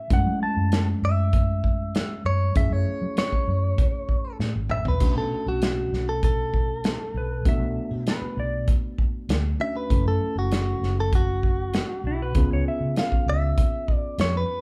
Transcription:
0.10 0.23 F#2 loud
0.10 2.52 G#3 medium
0.10 2.52 A3 medium
0.10 2.52 C#4 medium
0.10 2.52 E4 medium
0.10 0.42 F#5 medium
0.10 kick loud
0.10 closed hi-hat medium
0.26 0.38 F#3 medium
0.43 0.87 A5 medium
0.56 0.94 F#2 medium
0.72 snare loud
0.72 closed hi-hat medium
1.02 2.01 F#2 medium
1.02 2.23 E5 medium
1.33 kick loud
1.33 closed hi-hat medium
1.64 kick medium
1.95 snare loud
1.95 closed hi-hat medium
2.25 2.50 F#2 medium
2.25 2.55 C#5 medium
2.55 2.68 F#2 medium
2.55 4.96 A3 medium
2.55 4.96 C#4 medium
2.55 4.96 E4 medium
2.55 4.97 G#4 medium
2.55 2.73 E5 medium
2.55 kick loud
2.55 closed hi-hat medium
2.71 2.83 F#2 medium
2.71 3.16 C#5 medium
3.02 3.14 F#3 medium
3.17 4.37 C#5 medium
3.17 snare loud
3.17 closed hi-hat medium
3.32 muted fingered electric bass stroke soft
3.32 kick medium
3.48 3.72 F#2 medium
3.78 kick loud
3.78 closed hi-hat medium
4.09 kick medium
4.39 4.52 A2 medium
4.39 snare medium
4.55 4.69 G#1 medium
4.69 4.84 A1 medium
4.69 4.86 E5 medium
4.69 mid tom medium
4.85 4.99 B1 medium
4.85 5.17 B4 medium
4.85 floor tom medium
5.00 5.13 B1 loud
5.00 7.41 A3 medium
5.00 7.41 C#4 medium
5.00 7.41 D4 medium
5.00 7.41 F#4 medium
5.00 kick loud
5.00 closed hi-hat medium
5.00 splash medium
5.16 5.28 B2 medium
5.16 5.47 A4 medium
5.46 5.83 B1 medium
5.46 6.07 F#4 medium
5.62 snare loud
5.62 closed hi-hat medium
5.92 6.91 B1 medium
5.92 snare soft
6.09 6.23 A4 medium
6.23 8.03 A4 medium
6.23 kick loud
6.23 closed hi-hat medium
6.54 kick medium
6.84 snare loud
6.84 closed hi-hat medium
7.14 7.39 B1 medium
7.14 7.46 B4 medium
7.45 7.58 B1 medium
7.45 9.56 A3 medium
7.45 9.56 B3 medium
7.45 9.56 D4 medium
7.45 9.56 F#4 medium
7.45 8.06 E5 medium
7.45 kick medium
7.45 closed hi-hat medium
7.60 7.73 B1 medium
7.91 8.03 B2 medium
8.07 8.38 B4 medium
8.07 snare loud
8.07 closed hi-hat medium
8.21 muted fingered electric bass stroke soft
8.37 8.62 B1 loud
8.37 8.68 D5 medium
8.68 kick loud
8.68 closed hi-hat medium
8.98 kick medium
9.29 9.54 D2 medium
9.29 snare loud
9.29 closed hi-hat medium
9.60 9.89 A3 soft
9.60 9.89 C#4 soft
9.60 9.90 D4 soft
9.60 9.90 F#4 soft
9.60 9.75 E5 loud
9.77 10.05 B4 medium
9.90 10.03 F#1 loud
9.90 12.31 A3 medium
9.90 12.31 C#4 medium
9.90 12.31 E4 medium
9.90 12.31 A4 medium
9.90 kick loud
9.90 closed hi-hat medium
10.05 10.17 F#2 medium
10.05 10.36 A4 medium
10.35 10.73 F#1 medium
10.35 10.97 F#4 medium
10.52 snare loud
10.52 closed hi-hat medium
10.81 11.81 F#1 medium
10.81 snare soft
11.00 11.14 A4 medium
11.13 12.33 F#4 medium
11.13 kick loud
11.13 closed hi-hat medium
11.43 kick medium
11.74 snare loud
11.74 closed hi-hat medium
12.04 12.29 B1 medium
12.04 12.21 E4 medium
12.22 12.51 B4 medium
12.35 12.48 C#2 medium
12.35 14.61 B3 medium
12.35 14.61 C#4 medium
12.35 14.61 F4 medium
12.35 14.61 G#4 medium
12.35 kick loud
12.35 closed hi-hat medium
12.50 12.62 C#2 medium
12.50 12.67 C#5 medium
12.68 12.97 E5 medium
12.80 12.93 C#3 medium
12.96 13.27 F5 medium
12.96 snare loud
12.96 closed hi-hat medium
13.12 muted fingered electric bass stroke soft
13.12 kick medium
13.26 13.51 C#2 medium
13.26 13.94 E5 medium
13.58 kick loud
13.58 closed hi-hat medium
13.88 kick medium
13.94 14.17 D5 medium
14.18 14.43 F2 medium
14.18 14.35 C#5 medium
14.18 snare loud
14.18 closed hi-hat medium
14.37 14.61 B4 medium

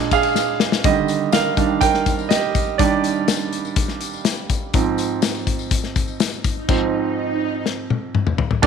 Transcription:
0.00 0.86 A#2 medium
0.00 0.86 G#3 medium
0.00 0.86 D4 medium
0.00 0.32 F4 medium
0.00 0.31 D5 loud
0.11 0.81 G#4 medium
0.11 0.81 F5 medium
0.11 kick medium
0.11 ride medium
0.11 tambourine soft
0.23 ride medium
0.23 tambourine soft
0.35 snare medium
0.35 tambourine medium
0.60 snare loud
0.60 tambourine soft
0.72 snare medium
0.84 1.54 D3 medium
0.84 1.54 D#3 soft
0.84 1.54 G3 medium
0.84 1.30 G4 medium
0.84 1.35 D#5 medium
0.84 kick loud
0.84 closed hi-hat medium
0.84 tambourine soft
1.08 closed hi-hat medium
1.08 tambourine medium
1.32 1.79 A#4 medium
1.32 1.78 F5 medium
1.32 snare loud
1.32 closed hi-hat medium
1.32 tambourine medium
1.57 1.79 D#3 soft
1.57 1.79 G3 soft
1.57 1.79 D4 medium
1.57 kick medium
1.57 closed hi-hat medium
1.57 tambourine soft
1.81 2.28 A#4 medium
1.81 2.26 G5 loud
1.81 kick medium
1.81 closed hi-hat medium
1.81 tambourine soft
1.94 snare soft
2.06 kick medium
2.06 closed hi-hat medium
2.06 tambourine soft
2.19 tambourine soft
2.29 2.76 G4 medium
2.29 2.80 D#5 medium
2.29 snare loud
2.29 closed hi-hat loud
2.29 tambourine medium
2.55 kick medium
2.55 closed hi-hat medium
2.55 tambourine soft
2.78 3.11 D#3 medium
2.78 3.12 G3 medium
2.78 3.12 D4 medium
2.78 3.49 G4 medium
2.78 3.48 D5 medium
2.78 kick loud
2.78 closed hi-hat medium
2.78 tambourine soft
3.04 closed hi-hat medium
3.04 tambourine medium
3.28 snare loud
3.28 closed hi-hat medium
3.28 tambourine medium
3.53 closed hi-hat medium
3.53 tambourine soft
3.65 tambourine soft
3.76 kick loud
3.76 closed hi-hat loud
3.76 tambourine soft
3.88 snare soft
4.01 closed hi-hat medium
4.01 tambourine soft
4.13 tambourine soft
4.25 snare loud
4.25 closed hi-hat loud
4.25 tambourine medium
4.50 kick medium
4.50 closed hi-hat medium
4.50 tambourine medium
4.74 5.06 G#2 medium
4.74 5.06 F3 medium
4.74 5.07 C4 medium
4.74 kick loud
4.74 closed hi-hat medium
4.74 tambourine soft
4.74 swell medium
4.98 closed hi-hat medium
4.98 tambourine soft
5.22 snare loud
5.22 closed hi-hat medium
5.22 tambourine medium
5.35 tambourine soft
5.47 kick medium
5.47 closed hi-hat medium
5.47 tambourine soft
5.59 tambourine soft
5.71 kick loud
5.71 closed hi-hat loud
5.71 tambourine soft
5.84 snare soft
5.96 kick medium
5.96 closed hi-hat medium
5.96 tambourine soft
6.08 tambourine soft
6.20 snare loud
6.20 closed hi-hat medium
6.20 tambourine medium
6.44 kick medium
6.44 closed hi-hat medium
6.44 tambourine soft
6.68 8.35 G#2 medium
6.68 8.35 F3 medium
6.68 8.35 C4 medium
6.68 kick loud
6.68 crash medium
7.66 snare medium
7.90 high tom medium
8.15 mid tom medium
8.27 mid tom medium
8.38 floor tom loud
8.51 floor tom medium
8.62 8.67 D#2 medium
8.62 8.67 A#2 medium
8.62 8.67 D4 medium
8.62 8.67 D#4 medium
8.62 8.67 G4 medium
8.62 8.67 A#4 medium
8.62 8.67 D5 loud
8.62 kick loud
8.62 crash loud
8.62 tambourine soft
8.62 impact medium

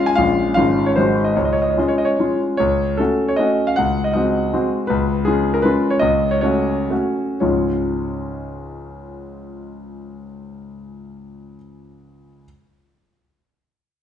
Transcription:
0.00 0.14 G#3 soft
0.00 0.14 C#4 soft
0.00 0.15 F4 soft
0.06 0.16 G#5 medium
0.16 0.55 A#1 medium
0.16 0.52 G#3 soft
0.16 0.52 C#4 soft
0.16 0.53 F4 soft
0.16 0.53 F5 medium
0.54 0.95 G#1 medium
0.54 0.92 G#3 soft
0.54 0.93 C#4 soft
0.54 0.93 F4 soft
0.54 0.86 F5 medium
0.86 0.96 C#5 medium
0.96 1.34 G#1 medium
0.96 1.32 G#3 soft
0.96 1.32 D#4 soft
0.96 1.33 F#4 soft
0.96 1.25 C5 medium
1.24 1.35 D#5 medium
1.36 1.76 C#2 soft
1.36 1.44 C#5 soft
1.45 1.53 D#5 soft
1.53 1.61 C#5 medium
1.62 1.71 D#5 soft
1.70 1.79 C#5 soft
1.77 2.15 G#3 soft
1.77 2.15 C#4 soft
1.77 2.16 F4 soft
1.77 1.89 D#5 soft
1.88 1.98 C#5 medium
1.98 2.07 D#5 soft
2.05 2.39 C#5 medium
2.19 2.55 G#3 soft
2.19 2.56 C#4 soft
2.19 2.56 F4 soft
2.57 2.98 C#2 soft
2.57 2.98 C#5 medium
2.97 3.35 A3 soft
2.97 3.35 C#4 soft
2.97 3.36 F#4 soft
2.97 3.28 A4 medium
3.28 3.39 C#5 medium
3.36 3.74 A3 soft
3.36 3.74 C#4 soft
3.36 3.74 F#4 soft
3.36 3.67 D#5 medium
3.67 3.77 F5 medium
3.76 4.14 C#2 soft
3.76 4.05 F#5 medium
4.04 4.12 D#5 medium
4.14 4.49 G#3 soft
4.14 4.49 C4 soft
4.14 4.50 F#4 soft
4.14 4.70 D#5 medium
4.53 4.85 G#3 soft
4.53 4.85 C4 soft
4.53 4.85 F#4 soft
4.87 5.25 C#2 medium
4.87 5.25 B4 medium
5.25 5.60 G#3 soft
5.25 5.61 C#4 soft
5.25 5.61 F4 soft
5.25 5.54 G#4 medium
5.54 5.63 A#4 medium
5.62 5.97 G#3 soft
5.62 5.97 C#4 soft
5.62 5.98 F4 soft
5.62 5.90 B4 medium
5.90 6.00 C#5 medium
5.99 6.42 C#2 medium
5.99 6.31 D#5 medium
6.31 6.40 C#5 medium
6.41 6.86 A3 soft
6.41 6.87 C#4 soft
6.41 6.87 F#4 soft
6.41 7.16 C#5 medium
6.90 7.39 A3 soft
6.90 7.38 C#4 soft
6.90 7.39 F#4 soft
7.40 11.56 C#2 soft
7.40 11.56 G#2 soft
7.40 11.56 F3 soft
7.40 11.56 G#3 soft
7.40 11.57 C#4 soft
7.40 11.57 F4 soft
7.40 11.55 C#5 soft

